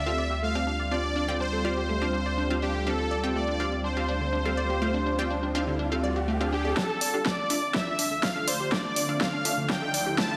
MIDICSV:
0, 0, Header, 1, 9, 480
1, 0, Start_track
1, 0, Key_signature, -1, "minor"
1, 0, Tempo, 487805
1, 900, Time_signature, 4, 2, 24, 8
1, 10202, End_track
2, 0, Start_track
2, 0, Title_t, "Digital synth lead"
2, 0, Program_c, 0, 84
2, 6660, Note_on_c, 0, 81, 102
2, 7135, Note_off_c, 0, 81, 0
2, 7141, Note_on_c, 0, 86, 103
2, 7615, Note_off_c, 0, 86, 0
2, 7621, Note_on_c, 0, 88, 107
2, 8094, Note_off_c, 0, 88, 0
2, 8100, Note_on_c, 0, 89, 107
2, 8334, Note_off_c, 0, 89, 0
2, 8340, Note_on_c, 0, 84, 97
2, 8564, Note_off_c, 0, 84, 0
2, 8580, Note_on_c, 0, 86, 111
2, 9055, Note_off_c, 0, 86, 0
2, 9060, Note_on_c, 0, 89, 110
2, 9534, Note_off_c, 0, 89, 0
2, 9540, Note_on_c, 0, 91, 114
2, 10014, Note_off_c, 0, 91, 0
2, 10020, Note_on_c, 0, 93, 109
2, 10202, Note_off_c, 0, 93, 0
2, 10202, End_track
3, 0, Start_track
3, 0, Title_t, "Supersaw synth"
3, 0, Program_c, 1, 81
3, 0, Note_on_c, 1, 76, 105
3, 387, Note_off_c, 1, 76, 0
3, 420, Note_on_c, 1, 77, 106
3, 900, Note_on_c, 1, 74, 105
3, 915, Note_off_c, 1, 77, 0
3, 1380, Note_on_c, 1, 72, 99
3, 1395, Note_off_c, 1, 74, 0
3, 1608, Note_off_c, 1, 72, 0
3, 1620, Note_on_c, 1, 72, 111
3, 2580, Note_on_c, 1, 67, 86
3, 2609, Note_off_c, 1, 72, 0
3, 2821, Note_on_c, 1, 69, 99
3, 2828, Note_off_c, 1, 67, 0
3, 3301, Note_on_c, 1, 74, 104
3, 3315, Note_off_c, 1, 69, 0
3, 3747, Note_off_c, 1, 74, 0
3, 3781, Note_on_c, 1, 72, 98
3, 6141, Note_off_c, 1, 72, 0
3, 6421, Note_on_c, 1, 67, 93
3, 6661, Note_on_c, 1, 69, 102
3, 6668, Note_off_c, 1, 67, 0
3, 7141, Note_on_c, 1, 74, 108
3, 7155, Note_off_c, 1, 69, 0
3, 7621, Note_on_c, 1, 76, 107
3, 7635, Note_off_c, 1, 74, 0
3, 8101, Note_on_c, 1, 77, 101
3, 8115, Note_off_c, 1, 76, 0
3, 8341, Note_on_c, 1, 72, 96
3, 8348, Note_off_c, 1, 77, 0
3, 8564, Note_off_c, 1, 72, 0
3, 8581, Note_on_c, 1, 74, 109
3, 9061, Note_on_c, 1, 77, 110
3, 9075, Note_off_c, 1, 74, 0
3, 9541, Note_on_c, 1, 79, 113
3, 9555, Note_off_c, 1, 77, 0
3, 10021, Note_on_c, 1, 81, 114
3, 10035, Note_off_c, 1, 79, 0
3, 10202, Note_off_c, 1, 81, 0
3, 10202, End_track
4, 0, Start_track
4, 0, Title_t, "Synth pluck"
4, 0, Program_c, 2, 84
4, 63, Note_on_c, 2, 60, 80
4, 63, Note_on_c, 2, 65, 74
4, 63, Note_on_c, 2, 67, 75
4, 63, Note_on_c, 2, 77, 87
4, 173, Note_off_c, 2, 60, 0
4, 173, Note_off_c, 2, 65, 0
4, 173, Note_off_c, 2, 67, 0
4, 173, Note_off_c, 2, 77, 0
4, 543, Note_on_c, 2, 60, 87
4, 543, Note_on_c, 2, 65, 80
4, 543, Note_on_c, 2, 67, 78
4, 543, Note_on_c, 2, 77, 93
4, 653, Note_off_c, 2, 60, 0
4, 653, Note_off_c, 2, 65, 0
4, 653, Note_off_c, 2, 67, 0
4, 653, Note_off_c, 2, 77, 0
4, 900, Note_on_c, 2, 60, 82
4, 900, Note_on_c, 2, 65, 76
4, 900, Note_on_c, 2, 67, 76
4, 900, Note_on_c, 2, 77, 93
4, 973, Note_off_c, 2, 60, 0
4, 973, Note_off_c, 2, 65, 0
4, 973, Note_off_c, 2, 67, 0
4, 973, Note_off_c, 2, 77, 0
4, 1264, Note_on_c, 2, 60, 92
4, 1264, Note_on_c, 2, 65, 89
4, 1264, Note_on_c, 2, 67, 86
4, 1264, Note_on_c, 2, 79, 109
4, 1593, Note_off_c, 2, 60, 0
4, 1593, Note_off_c, 2, 65, 0
4, 1593, Note_off_c, 2, 67, 0
4, 1593, Note_off_c, 2, 79, 0
4, 1620, Note_on_c, 2, 60, 92
4, 1620, Note_on_c, 2, 65, 84
4, 1620, Note_on_c, 2, 67, 82
4, 1620, Note_on_c, 2, 77, 99
4, 1693, Note_off_c, 2, 60, 0
4, 1693, Note_off_c, 2, 65, 0
4, 1693, Note_off_c, 2, 67, 0
4, 1693, Note_off_c, 2, 77, 0
4, 1983, Note_on_c, 2, 60, 80
4, 1984, Note_on_c, 2, 65, 75
4, 1984, Note_on_c, 2, 67, 73
4, 1984, Note_on_c, 2, 77, 92
4, 2093, Note_off_c, 2, 60, 0
4, 2093, Note_off_c, 2, 65, 0
4, 2093, Note_off_c, 2, 67, 0
4, 2093, Note_off_c, 2, 77, 0
4, 2464, Note_on_c, 2, 60, 87
4, 2464, Note_on_c, 2, 65, 77
4, 2464, Note_on_c, 2, 67, 80
4, 2464, Note_on_c, 2, 77, 94
4, 2573, Note_off_c, 2, 65, 0
4, 2573, Note_off_c, 2, 77, 0
4, 2574, Note_off_c, 2, 60, 0
4, 2574, Note_off_c, 2, 67, 0
4, 2821, Note_on_c, 2, 60, 81
4, 2821, Note_on_c, 2, 65, 74
4, 2821, Note_on_c, 2, 67, 76
4, 2821, Note_on_c, 2, 77, 88
4, 2893, Note_off_c, 2, 60, 0
4, 2893, Note_off_c, 2, 65, 0
4, 2893, Note_off_c, 2, 67, 0
4, 2893, Note_off_c, 2, 77, 0
4, 3184, Note_on_c, 2, 60, 94
4, 3184, Note_on_c, 2, 65, 87
4, 3184, Note_on_c, 2, 67, 88
4, 3184, Note_on_c, 2, 79, 105
4, 3513, Note_off_c, 2, 60, 0
4, 3513, Note_off_c, 2, 65, 0
4, 3513, Note_off_c, 2, 67, 0
4, 3513, Note_off_c, 2, 79, 0
4, 3541, Note_on_c, 2, 60, 90
4, 3541, Note_on_c, 2, 65, 85
4, 3541, Note_on_c, 2, 67, 84
4, 3541, Note_on_c, 2, 77, 102
4, 3613, Note_off_c, 2, 60, 0
4, 3613, Note_off_c, 2, 65, 0
4, 3613, Note_off_c, 2, 67, 0
4, 3613, Note_off_c, 2, 77, 0
4, 3904, Note_on_c, 2, 60, 84
4, 3904, Note_on_c, 2, 65, 74
4, 3904, Note_on_c, 2, 67, 75
4, 3904, Note_on_c, 2, 77, 94
4, 4013, Note_off_c, 2, 65, 0
4, 4014, Note_off_c, 2, 60, 0
4, 4014, Note_off_c, 2, 67, 0
4, 4014, Note_off_c, 2, 77, 0
4, 4384, Note_on_c, 2, 60, 87
4, 4384, Note_on_c, 2, 65, 78
4, 4384, Note_on_c, 2, 67, 78
4, 4384, Note_on_c, 2, 77, 100
4, 4493, Note_off_c, 2, 60, 0
4, 4493, Note_off_c, 2, 65, 0
4, 4493, Note_off_c, 2, 67, 0
4, 4493, Note_off_c, 2, 77, 0
4, 4740, Note_on_c, 2, 60, 81
4, 4740, Note_on_c, 2, 65, 73
4, 4740, Note_on_c, 2, 67, 75
4, 4740, Note_on_c, 2, 77, 92
4, 4813, Note_off_c, 2, 60, 0
4, 4813, Note_off_c, 2, 65, 0
4, 4813, Note_off_c, 2, 67, 0
4, 4813, Note_off_c, 2, 77, 0
4, 5104, Note_on_c, 2, 60, 96
4, 5104, Note_on_c, 2, 65, 91
4, 5104, Note_on_c, 2, 67, 86
4, 5104, Note_on_c, 2, 79, 104
4, 5433, Note_off_c, 2, 60, 0
4, 5433, Note_off_c, 2, 65, 0
4, 5433, Note_off_c, 2, 67, 0
4, 5433, Note_off_c, 2, 79, 0
4, 5460, Note_on_c, 2, 60, 89
4, 5460, Note_on_c, 2, 65, 86
4, 5460, Note_on_c, 2, 67, 81
4, 5460, Note_on_c, 2, 77, 101
4, 5533, Note_off_c, 2, 60, 0
4, 5533, Note_off_c, 2, 65, 0
4, 5533, Note_off_c, 2, 67, 0
4, 5533, Note_off_c, 2, 77, 0
4, 5824, Note_on_c, 2, 60, 81
4, 5824, Note_on_c, 2, 65, 76
4, 5824, Note_on_c, 2, 67, 73
4, 5824, Note_on_c, 2, 77, 88
4, 5933, Note_off_c, 2, 60, 0
4, 5933, Note_off_c, 2, 65, 0
4, 5933, Note_off_c, 2, 67, 0
4, 5933, Note_off_c, 2, 77, 0
4, 6303, Note_on_c, 2, 65, 81
4, 6304, Note_on_c, 2, 60, 90
4, 6304, Note_on_c, 2, 67, 82
4, 6304, Note_on_c, 2, 77, 93
4, 6413, Note_off_c, 2, 60, 0
4, 6413, Note_off_c, 2, 65, 0
4, 6413, Note_off_c, 2, 67, 0
4, 6413, Note_off_c, 2, 77, 0
4, 6660, Note_on_c, 2, 62, 84
4, 6660, Note_on_c, 2, 65, 79
4, 6660, Note_on_c, 2, 69, 77
4, 6660, Note_on_c, 2, 76, 93
4, 6733, Note_off_c, 2, 62, 0
4, 6733, Note_off_c, 2, 65, 0
4, 6733, Note_off_c, 2, 69, 0
4, 6733, Note_off_c, 2, 76, 0
4, 7023, Note_on_c, 2, 62, 100
4, 7023, Note_on_c, 2, 65, 88
4, 7023, Note_on_c, 2, 69, 88
4, 7023, Note_on_c, 2, 77, 107
4, 7352, Note_off_c, 2, 62, 0
4, 7352, Note_off_c, 2, 65, 0
4, 7352, Note_off_c, 2, 69, 0
4, 7352, Note_off_c, 2, 77, 0
4, 7380, Note_on_c, 2, 62, 93
4, 7380, Note_on_c, 2, 65, 86
4, 7380, Note_on_c, 2, 69, 86
4, 7380, Note_on_c, 2, 76, 103
4, 7453, Note_off_c, 2, 62, 0
4, 7453, Note_off_c, 2, 65, 0
4, 7453, Note_off_c, 2, 69, 0
4, 7453, Note_off_c, 2, 76, 0
4, 7743, Note_on_c, 2, 62, 83
4, 7743, Note_on_c, 2, 65, 75
4, 7743, Note_on_c, 2, 69, 76
4, 7743, Note_on_c, 2, 76, 88
4, 7853, Note_off_c, 2, 62, 0
4, 7853, Note_off_c, 2, 65, 0
4, 7853, Note_off_c, 2, 69, 0
4, 7853, Note_off_c, 2, 76, 0
4, 8223, Note_on_c, 2, 62, 87
4, 8223, Note_on_c, 2, 65, 79
4, 8223, Note_on_c, 2, 69, 83
4, 8223, Note_on_c, 2, 76, 97
4, 8333, Note_off_c, 2, 62, 0
4, 8333, Note_off_c, 2, 65, 0
4, 8333, Note_off_c, 2, 69, 0
4, 8333, Note_off_c, 2, 76, 0
4, 8580, Note_on_c, 2, 62, 85
4, 8580, Note_on_c, 2, 65, 77
4, 8581, Note_on_c, 2, 69, 75
4, 8581, Note_on_c, 2, 76, 91
4, 8653, Note_off_c, 2, 62, 0
4, 8653, Note_off_c, 2, 65, 0
4, 8653, Note_off_c, 2, 69, 0
4, 8653, Note_off_c, 2, 76, 0
4, 8944, Note_on_c, 2, 62, 98
4, 8944, Note_on_c, 2, 65, 88
4, 8944, Note_on_c, 2, 69, 90
4, 8944, Note_on_c, 2, 77, 108
4, 9273, Note_off_c, 2, 62, 0
4, 9273, Note_off_c, 2, 65, 0
4, 9273, Note_off_c, 2, 69, 0
4, 9273, Note_off_c, 2, 77, 0
4, 9300, Note_on_c, 2, 62, 91
4, 9300, Note_on_c, 2, 65, 85
4, 9300, Note_on_c, 2, 69, 85
4, 9300, Note_on_c, 2, 76, 101
4, 9373, Note_off_c, 2, 62, 0
4, 9373, Note_off_c, 2, 65, 0
4, 9373, Note_off_c, 2, 69, 0
4, 9373, Note_off_c, 2, 76, 0
4, 9663, Note_on_c, 2, 62, 83
4, 9663, Note_on_c, 2, 65, 76
4, 9663, Note_on_c, 2, 69, 76
4, 9663, Note_on_c, 2, 76, 93
4, 9773, Note_off_c, 2, 62, 0
4, 9773, Note_off_c, 2, 65, 0
4, 9773, Note_off_c, 2, 69, 0
4, 9773, Note_off_c, 2, 76, 0
4, 10143, Note_on_c, 2, 62, 87
4, 10143, Note_on_c, 2, 65, 83
4, 10143, Note_on_c, 2, 69, 82
4, 10143, Note_on_c, 2, 76, 101
4, 10202, Note_off_c, 2, 62, 0
4, 10202, Note_off_c, 2, 65, 0
4, 10202, Note_off_c, 2, 69, 0
4, 10202, Note_off_c, 2, 76, 0
4, 10202, End_track
5, 0, Start_track
5, 0, Title_t, "Synth arpeggio sound"
5, 0, Program_c, 3, 84
5, 63, Note_on_c, 3, 69, 75
5, 157, Note_off_c, 3, 69, 0
5, 180, Note_on_c, 3, 74, 100
5, 246, Note_off_c, 3, 74, 0
5, 303, Note_on_c, 3, 67, 75
5, 366, Note_off_c, 3, 67, 0
5, 420, Note_on_c, 3, 57, 79
5, 486, Note_off_c, 3, 57, 0
5, 543, Note_on_c, 3, 62, 74
5, 606, Note_off_c, 3, 62, 0
5, 660, Note_on_c, 3, 62, 75
5, 726, Note_off_c, 3, 62, 0
5, 783, Note_on_c, 3, 74, 73
5, 821, Note_off_c, 3, 74, 0
5, 900, Note_on_c, 3, 62, 81
5, 999, Note_off_c, 3, 62, 0
5, 1023, Note_on_c, 3, 62, 76
5, 1117, Note_off_c, 3, 62, 0
5, 1140, Note_on_c, 3, 62, 102
5, 1206, Note_off_c, 3, 62, 0
5, 1263, Note_on_c, 3, 50, 74
5, 1326, Note_off_c, 3, 50, 0
5, 1380, Note_on_c, 3, 62, 82
5, 1420, Note_off_c, 3, 62, 0
5, 1503, Note_on_c, 3, 69, 75
5, 1597, Note_off_c, 3, 69, 0
5, 1620, Note_on_c, 3, 74, 97
5, 1686, Note_off_c, 3, 74, 0
5, 1743, Note_on_c, 3, 67, 72
5, 1806, Note_off_c, 3, 67, 0
5, 1860, Note_on_c, 3, 57, 80
5, 1926, Note_off_c, 3, 57, 0
5, 1983, Note_on_c, 3, 62, 75
5, 2046, Note_off_c, 3, 62, 0
5, 2100, Note_on_c, 3, 62, 74
5, 2166, Note_off_c, 3, 62, 0
5, 2223, Note_on_c, 3, 74, 73
5, 2261, Note_off_c, 3, 74, 0
5, 2340, Note_on_c, 3, 62, 80
5, 2439, Note_off_c, 3, 62, 0
5, 2463, Note_on_c, 3, 62, 75
5, 2557, Note_off_c, 3, 62, 0
5, 2580, Note_on_c, 3, 62, 100
5, 2646, Note_off_c, 3, 62, 0
5, 2703, Note_on_c, 3, 50, 72
5, 2766, Note_off_c, 3, 50, 0
5, 2820, Note_on_c, 3, 62, 80
5, 2860, Note_off_c, 3, 62, 0
5, 2944, Note_on_c, 3, 69, 75
5, 3037, Note_off_c, 3, 69, 0
5, 3060, Note_on_c, 3, 74, 101
5, 3126, Note_off_c, 3, 74, 0
5, 3184, Note_on_c, 3, 67, 74
5, 3246, Note_off_c, 3, 67, 0
5, 3300, Note_on_c, 3, 57, 81
5, 3366, Note_off_c, 3, 57, 0
5, 3424, Note_on_c, 3, 62, 77
5, 3486, Note_off_c, 3, 62, 0
5, 3540, Note_on_c, 3, 62, 74
5, 3606, Note_off_c, 3, 62, 0
5, 3664, Note_on_c, 3, 74, 74
5, 3701, Note_off_c, 3, 74, 0
5, 3780, Note_on_c, 3, 62, 80
5, 3879, Note_off_c, 3, 62, 0
5, 3904, Note_on_c, 3, 62, 76
5, 3997, Note_off_c, 3, 62, 0
5, 4020, Note_on_c, 3, 62, 96
5, 4086, Note_off_c, 3, 62, 0
5, 4143, Note_on_c, 3, 50, 74
5, 4206, Note_off_c, 3, 50, 0
5, 4260, Note_on_c, 3, 62, 81
5, 4300, Note_off_c, 3, 62, 0
5, 4383, Note_on_c, 3, 69, 77
5, 4477, Note_off_c, 3, 69, 0
5, 4500, Note_on_c, 3, 74, 99
5, 4566, Note_off_c, 3, 74, 0
5, 4623, Note_on_c, 3, 67, 74
5, 4686, Note_off_c, 3, 67, 0
5, 4740, Note_on_c, 3, 57, 80
5, 4806, Note_off_c, 3, 57, 0
5, 4863, Note_on_c, 3, 62, 80
5, 4926, Note_off_c, 3, 62, 0
5, 4980, Note_on_c, 3, 62, 76
5, 5046, Note_off_c, 3, 62, 0
5, 5104, Note_on_c, 3, 74, 76
5, 5141, Note_off_c, 3, 74, 0
5, 5220, Note_on_c, 3, 62, 82
5, 5319, Note_off_c, 3, 62, 0
5, 5343, Note_on_c, 3, 62, 73
5, 5437, Note_off_c, 3, 62, 0
5, 5460, Note_on_c, 3, 62, 96
5, 5526, Note_off_c, 3, 62, 0
5, 5583, Note_on_c, 3, 50, 75
5, 5646, Note_off_c, 3, 50, 0
5, 5700, Note_on_c, 3, 62, 78
5, 5740, Note_off_c, 3, 62, 0
5, 5823, Note_on_c, 3, 69, 77
5, 5917, Note_off_c, 3, 69, 0
5, 5940, Note_on_c, 3, 74, 97
5, 6006, Note_off_c, 3, 74, 0
5, 6064, Note_on_c, 3, 67, 76
5, 6126, Note_off_c, 3, 67, 0
5, 6180, Note_on_c, 3, 57, 79
5, 6246, Note_off_c, 3, 57, 0
5, 6303, Note_on_c, 3, 62, 75
5, 6366, Note_off_c, 3, 62, 0
5, 6420, Note_on_c, 3, 62, 75
5, 6486, Note_off_c, 3, 62, 0
5, 6544, Note_on_c, 3, 74, 74
5, 6581, Note_off_c, 3, 74, 0
5, 6660, Note_on_c, 3, 62, 78
5, 6700, Note_off_c, 3, 62, 0
5, 6784, Note_on_c, 3, 69, 77
5, 6877, Note_off_c, 3, 69, 0
5, 6901, Note_on_c, 3, 74, 105
5, 6966, Note_off_c, 3, 74, 0
5, 7024, Note_on_c, 3, 67, 74
5, 7086, Note_off_c, 3, 67, 0
5, 7140, Note_on_c, 3, 57, 79
5, 7206, Note_off_c, 3, 57, 0
5, 7264, Note_on_c, 3, 62, 76
5, 7326, Note_off_c, 3, 62, 0
5, 7381, Note_on_c, 3, 62, 72
5, 7447, Note_off_c, 3, 62, 0
5, 7504, Note_on_c, 3, 74, 73
5, 7541, Note_off_c, 3, 74, 0
5, 7621, Note_on_c, 3, 62, 82
5, 7719, Note_off_c, 3, 62, 0
5, 7744, Note_on_c, 3, 62, 76
5, 7838, Note_off_c, 3, 62, 0
5, 7861, Note_on_c, 3, 62, 101
5, 7926, Note_off_c, 3, 62, 0
5, 7984, Note_on_c, 3, 50, 76
5, 8046, Note_off_c, 3, 50, 0
5, 8101, Note_on_c, 3, 62, 80
5, 8140, Note_off_c, 3, 62, 0
5, 8224, Note_on_c, 3, 69, 79
5, 8318, Note_off_c, 3, 69, 0
5, 8341, Note_on_c, 3, 74, 100
5, 8407, Note_off_c, 3, 74, 0
5, 8464, Note_on_c, 3, 67, 74
5, 8526, Note_off_c, 3, 67, 0
5, 8581, Note_on_c, 3, 57, 81
5, 8647, Note_off_c, 3, 57, 0
5, 8704, Note_on_c, 3, 62, 78
5, 8766, Note_off_c, 3, 62, 0
5, 8821, Note_on_c, 3, 62, 77
5, 8887, Note_off_c, 3, 62, 0
5, 8944, Note_on_c, 3, 74, 75
5, 8981, Note_off_c, 3, 74, 0
5, 9061, Note_on_c, 3, 62, 83
5, 9159, Note_off_c, 3, 62, 0
5, 9184, Note_on_c, 3, 62, 75
5, 9278, Note_off_c, 3, 62, 0
5, 9301, Note_on_c, 3, 62, 102
5, 9366, Note_off_c, 3, 62, 0
5, 9423, Note_on_c, 3, 50, 75
5, 9486, Note_off_c, 3, 50, 0
5, 9540, Note_on_c, 3, 62, 85
5, 9580, Note_off_c, 3, 62, 0
5, 9663, Note_on_c, 3, 69, 78
5, 9757, Note_off_c, 3, 69, 0
5, 9780, Note_on_c, 3, 74, 101
5, 9846, Note_off_c, 3, 74, 0
5, 9903, Note_on_c, 3, 67, 75
5, 9966, Note_off_c, 3, 67, 0
5, 10020, Note_on_c, 3, 57, 79
5, 10086, Note_off_c, 3, 57, 0
5, 10143, Note_on_c, 3, 62, 80
5, 10202, Note_off_c, 3, 62, 0
5, 10202, End_track
6, 0, Start_track
6, 0, Title_t, "Ambient pad"
6, 0, Program_c, 4, 92
6, 0, Note_on_c, 4, 55, 81
6, 0, Note_on_c, 4, 60, 77
6, 0, Note_on_c, 4, 65, 76
6, 6621, Note_off_c, 4, 55, 0
6, 6621, Note_off_c, 4, 65, 0
6, 6622, Note_off_c, 4, 60, 0
6, 6661, Note_on_c, 4, 38, 84
6, 6661, Note_on_c, 4, 50, 77
6, 6661, Note_on_c, 4, 53, 76
6, 6661, Note_on_c, 4, 57, 77
6, 6661, Note_on_c, 4, 65, 91
6, 10202, Note_off_c, 4, 38, 0
6, 10202, Note_off_c, 4, 50, 0
6, 10202, Note_off_c, 4, 53, 0
6, 10202, Note_off_c, 4, 57, 0
6, 10202, Note_off_c, 4, 65, 0
6, 10202, End_track
7, 0, Start_track
7, 0, Title_t, "Analog synth bass"
7, 0, Program_c, 5, 38
7, 0, Note_on_c, 5, 38, 86
7, 6637, Note_off_c, 5, 38, 0
7, 10202, End_track
8, 0, Start_track
8, 0, Title_t, "Riser"
8, 0, Program_c, 6, 103
8, 2821, Note_on_c, 6, 60, 70
8, 6660, Note_off_c, 6, 60, 0
8, 6660, Note_on_c, 6, 60, 76
8, 10202, Note_off_c, 6, 60, 0
8, 10202, End_track
9, 0, Start_track
9, 0, Title_t, "Drums"
9, 6660, Note_on_c, 9, 38, 47
9, 6661, Note_on_c, 9, 36, 112
9, 6759, Note_off_c, 9, 36, 0
9, 6759, Note_off_c, 9, 38, 0
9, 6900, Note_on_c, 9, 46, 101
9, 6999, Note_off_c, 9, 46, 0
9, 7140, Note_on_c, 9, 38, 48
9, 7141, Note_on_c, 9, 36, 111
9, 7239, Note_off_c, 9, 36, 0
9, 7239, Note_off_c, 9, 38, 0
9, 7380, Note_on_c, 9, 46, 97
9, 7479, Note_off_c, 9, 46, 0
9, 7620, Note_on_c, 9, 38, 47
9, 7621, Note_on_c, 9, 36, 116
9, 7719, Note_off_c, 9, 36, 0
9, 7719, Note_off_c, 9, 38, 0
9, 7860, Note_on_c, 9, 46, 103
9, 7959, Note_off_c, 9, 46, 0
9, 8100, Note_on_c, 9, 38, 52
9, 8100, Note_on_c, 9, 46, 61
9, 8101, Note_on_c, 9, 36, 109
9, 8199, Note_off_c, 9, 36, 0
9, 8199, Note_off_c, 9, 38, 0
9, 8199, Note_off_c, 9, 46, 0
9, 8340, Note_on_c, 9, 46, 104
9, 8439, Note_off_c, 9, 46, 0
9, 8581, Note_on_c, 9, 36, 124
9, 8581, Note_on_c, 9, 38, 52
9, 8679, Note_off_c, 9, 36, 0
9, 8679, Note_off_c, 9, 38, 0
9, 8820, Note_on_c, 9, 46, 103
9, 8919, Note_off_c, 9, 46, 0
9, 9061, Note_on_c, 9, 36, 118
9, 9061, Note_on_c, 9, 38, 54
9, 9159, Note_off_c, 9, 36, 0
9, 9159, Note_off_c, 9, 38, 0
9, 9300, Note_on_c, 9, 46, 103
9, 9399, Note_off_c, 9, 46, 0
9, 9540, Note_on_c, 9, 38, 55
9, 9541, Note_on_c, 9, 36, 122
9, 9639, Note_off_c, 9, 36, 0
9, 9639, Note_off_c, 9, 38, 0
9, 9780, Note_on_c, 9, 46, 104
9, 9879, Note_off_c, 9, 46, 0
9, 10020, Note_on_c, 9, 36, 115
9, 10021, Note_on_c, 9, 38, 57
9, 10119, Note_off_c, 9, 36, 0
9, 10119, Note_off_c, 9, 38, 0
9, 10202, End_track
0, 0, End_of_file